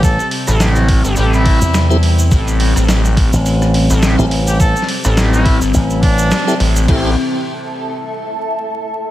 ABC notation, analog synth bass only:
X:1
M:4/4
L:1/16
Q:"Swing 16ths" 1/4=105
K:Am
V:1 name="Analog synth bass" clef=bass
z3 A,,,4 G,,, A,,,3 z4 z | A,,,3 A,,,4 z4 A,,,2 z3 | z3 A,,,4 G,,, z6 A,,,2 | A,,,2 z12 z2 |]